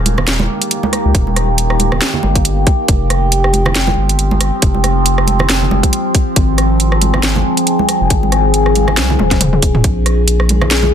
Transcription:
Already playing: sub bass D#1, synth drone D#3 A#3 G4
0.06 closed hi-hat, high conga
0.18 cross-stick, low conga
0.28 snare, closed hi-hat
0.39 high conga, low conga
0.62 closed hi-hat
0.71 closed hi-hat
0.83 high conga
0.93 cross-stick, closed hi-hat
1.05 sub bass C#2
1.15 sub bass D#1, kick, closed hi-hat
1.27 high conga
1.36 cross-stick, closed hi-hat
1.58 closed hi-hat
1.70 cross-stick
1.79 closed hi-hat, high conga
1.92 cross-stick, low conga
2.02 snare, closed hi-hat
2.14 low conga
2.23 sub bass G1, high conga
2.36 kick, closed hi-hat
2.45 closed hi-hat
2.67 kick, closed hi-hat
2.88 sub bass F1, synth drone F3 C4, kick, closed hi-hat
3.10 cross-stick, closed hi-hat
3.32 closed hi-hat
3.44 cross-stick
3.53 closed hi-hat, high conga
3.66 cross-stick, low conga
3.75 snare, closed hi-hat
3.87 high conga, low conga
3.97 sub bass G1
4.09 closed hi-hat
4.19 closed hi-hat
4.31 high conga
4.41 cross-stick, open hi-hat
4.62 sub bass F1, kick, closed hi-hat
4.74 high conga
4.84 cross-stick, closed hi-hat
5.06 closed hi-hat
5.18 cross-stick
5.27 closed hi-hat, high conga
5.39 cross-stick, low conga
5.50 snare, closed hi-hat
5.62 low conga
5.71 sub bass F1, high conga
5.83 kick, closed hi-hat
5.93 closed hi-hat
6.15 kick, open hi-hat
6.36 sub bass G#1, synth drone G#4, kick, closed hi-hat
6.58 cross-stick, closed hi-hat
6.80 closed hi-hat
6.92 cross-stick
7.02 closed hi-hat, high conga
7.14 cross-stick, low conga
7.23 snare, closed hi-hat
7.35 high conga, low conga
7.57 closed hi-hat
7.67 closed hi-hat
7.79 high conga
7.89 cross-stick, open hi-hat
8.01 sub bass F1
8.10 sub bass G#1, kick, closed hi-hat
8.23 high conga
8.32 cross-stick, closed hi-hat
8.54 closed hi-hat
8.66 cross-stick
8.75 open hi-hat, high conga
8.88 cross-stick, low conga
8.97 sub bass C2, snare, closed hi-hat
9.10 low conga
9.19 sub bass D#1, high tom, high conga
9.31 kick, snare, closed hi-hat, high tom
9.41 closed hi-hat, mid tom
9.53 mid tom
9.62 kick, open hi-hat
9.75 mid tom
9.84 sub bass A#1, synth drone C#3 A#3 G#4, kick, closed hi-hat
10.06 cross-stick, closed hi-hat
10.28 closed hi-hat
10.40 cross-stick
10.49 closed hi-hat, high conga
10.62 cross-stick, low conga
10.71 snare, closed hi-hat
10.82 high conga, low conga

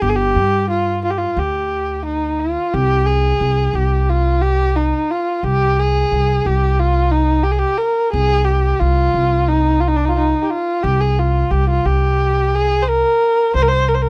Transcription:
0.02 upright bass G1, kamancheh G4
0.09 kamancheh G#4
0.15 kamancheh G4
0.35 upright bass G2
0.70 kamancheh F4
1.04 kamancheh F4
1.10 kamancheh G4
1.18 kamancheh F4
1.37 upright bass D2, kamancheh G4
2.05 kamancheh D#4
2.40 kamancheh F4
2.74 upright bass C2, kamancheh G4
3.06 kamancheh G#4
3.40 upright bass C2
3.73 upright bass C2, kamancheh G4
4.09 kamancheh F4
4.42 kamancheh G4
4.76 kamancheh D#4
5.11 kamancheh F4
5.43 upright bass C2, kamancheh G4
5.79 kamancheh G#4
6.11 upright bass C2
6.45 upright bass C2, kamancheh G4
6.79 kamancheh F4
7.12 kamancheh D#4
7.43 kamancheh G4
7.51 kamancheh G#4
7.58 kamancheh G4
7.78 kamancheh A#4
8.12 upright bass C2, kamancheh G#4
8.44 kamancheh G4
8.79 upright bass C2, kamancheh F4
9.14 upright bass C2
9.48 kamancheh D#4
9.80 kamancheh F4
9.88 kamancheh D#4
9.96 kamancheh D4
10.05 kamancheh D#4 F4
10.17 kamancheh D#4
10.42 kamancheh G4
10.50 kamancheh F4
10.83 upright bass C2, kamancheh G4
11.00 kamancheh G#4
11.19 kamancheh F4
11.50 upright bass C2, kamancheh G4
11.69 kamancheh F4
11.85 upright bass C2, kamancheh G4
12.55 kamancheh G#4
12.82 kamancheh C5
12.88 kamancheh A#4
13.54 upright bass C2, kamancheh C5
13.62 kamancheh A#4
13.68 kamancheh C5
13.88 kamancheh A#4
13.94 kamancheh C5
14.02 kamancheh A#4

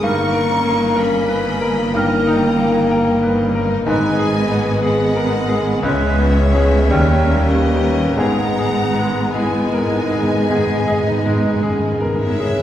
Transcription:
0.03 double bass section G1, grand piano G2, cello section G2, french horn section D#3 A#3, violin section G3 D#5 C#6, bassoon A#3, viola section A#3, clarinet D#4, oboe A#4, flute section A#5
0.28 violin section A#3
0.33 grand piano A#4
0.51 violin section C#4
0.64 grand piano A#3
0.74 violin section D#4
0.96 violin section C#4, grand piano A#4, flute section G#5
1.00 violin section B5
1.22 violin section A#3
1.28 grand piano B4
1.47 violin section G3
1.61 grand piano A#4
1.71 violin section A#3
1.94 grand piano G2, bassoon A#3, violin section C#4 A#5, clarinet D#4, oboe A#4, flute section G5
2.19 violin section D#4
2.27 grand piano D#4
2.44 violin section C#4
2.59 grand piano A#3
2.67 violin section A#3
2.91 violin section G3, grand piano A#4
3.14 violin section A#3
3.23 grand piano B4
3.40 violin section C#4
3.55 grand piano A#4
3.63 violin section D#4
3.86 double bass section G#1, grand piano G#2, cello section G#2, violin section G#3 B4 G#5, bassoon G#3, viola section G#3 B3, french horn section B3, clarinet D#4, oboe B4, flute section D#5
4.11 violin section B3
4.19 grand piano G#4
4.35 violin section D#4
4.51 grand piano B3
4.59 violin section B3
4.82 violin section G#3 F#5, grand piano G#4, flute section D#5
5.05 violin section B3
5.16 grand piano A#4
5.31 violin section D#4
5.49 grand piano G#4
5.56 violin section B3
5.82 grand piano C#2, cello section C#2, double bass section C#2, violin section G#3 E5, french horn section G#3, bassoon G#3, viola section C#4, clarinet C#4, oboe B4, flute section C#5
6.08 violin section B3
6.19 grand piano B3
6.34 violin section C#4
6.55 grand piano C#4 G#4
6.61 violin section E4
6.87 cello section D#2, double bass section D#2, grand piano D#2, violin section G3 A#4, french horn section G3 C#4, bassoon G3, viola section G3, clarinet C#4
6.92 oboe A#4
7.17 violin section A#3
7.30 grand piano A#3
7.51 violin section C#4 D#5, flute section B4
7.75 grand piano C#4 G4
7.86 violin section D#4
8.17 double bass section G#1, grand piano G#2, cello section G#2, timpani G#2, french horn section G#3 B3, violin section G#3 A#5, bassoon G#3, viola section G#3 B3, clarinet B3, oboe G#4, flute section F#5
8.28 timpani G#2
8.38 timpani G#2
8.47 timpani G#2, violin section B3
8.56 timpani G#2, grand piano G#4
8.64 timpani G#2
8.73 timpani G#2, violin section D#4
8.82 timpani G#2
8.92 timpani G#2
8.98 timpani G#2, grand piano G#3
9.06 timpani G#2, violin section B3
9.17 timpani G#2
9.34 timpani G#2, violin section G#3 G#4 G#5, clarinet E4, grand piano G#4, flute section D#5
9.43 timpani G#2
9.52 timpani G#2
9.61 timpani G#2, violin section B3
9.69 timpani G#2
9.73 grand piano A#4
9.78 timpani G#2
9.87 timpani G#2
9.92 timpani G#2, clarinet D#4, violin section D#4
10.05 timpani G#2
10.12 timpani G#2, grand piano G#4
10.20 timpani G#2, violin section B3
10.31 timpani G#2
10.40 timpani G#2
10.49 timpani G#2, grand piano D#3, violin section G#3, bassoon G#3, clarinet B3, oboe G#4
10.59 timpani G#2
10.67 timpani G#2
10.75 timpani G#2, violin section B3
10.84 timpani G#2
10.88 timpani G#2, grand piano G#4
11.00 timpani G#2
11.06 timpani G#2, violin section D#4, clarinet D#4
11.18 timpani G#2
11.26 timpani G#2, grand piano G#3
11.36 timpani G#2, violin section B3
11.45 timpani G#2
11.54 timpani G#2
11.62 timpani G#2, violin section G#3, clarinet C#4, grand piano G#4
11.70 timpani G#2
11.79 timpani G#2
11.87 timpani G#2, violin section B3
11.96 timpani G#2
12.01 grand piano A#4
12.06 timpani G#2
12.14 timpani G#2
12.20 timpani G#2, clarinet B3, violin section D#4 E4 E5, flute section C#5
12.31 timpani G#2
12.40 timpani G#2, grand piano G#4
12.49 timpani G#2, violin section B3
12.58 timpani G#2

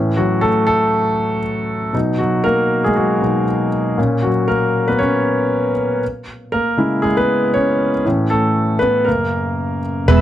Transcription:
Already playing: grand piano A2 E3 C#4
0.16 grand piano F#3 F#4
0.41 grand piano A3 A4
0.67 grand piano A3 A4
1.93 grand piano B2 F#3 D#4
2.18 grand piano F#3 F#4
2.44 grand piano A#3 A#4
2.84 grand piano G#3 G#4
2.96 grand piano F#3 F#4
3.21 grand piano B2 F#3 D#4
3.98 grand piano A#2 A#3 C#4
4.22 grand piano F#3 F#4
4.48 grand piano A#3 A#4
4.88 grand piano B3 B4
4.99 grand piano C#4 C#5
6.52 grand piano A#3 A#4
6.77 grand piano C#3 G#3 E4
7.02 grand piano G#3 G#4
7.17 grand piano B3 B4
7.54 grand piano C#4 C#5
8.05 grand piano A2 E3 C#4
8.30 grand piano A3 A4
8.79 grand piano B3 B4
9.05 grand piano F#2 C#3 A#3 A#4
10.08 fingered electric bass E1, steel-string acoustic guitar E2 B2 E3 G#3 B3 G#4, grand piano B3 B4, analog synth pad G#4 E5 B5 E6

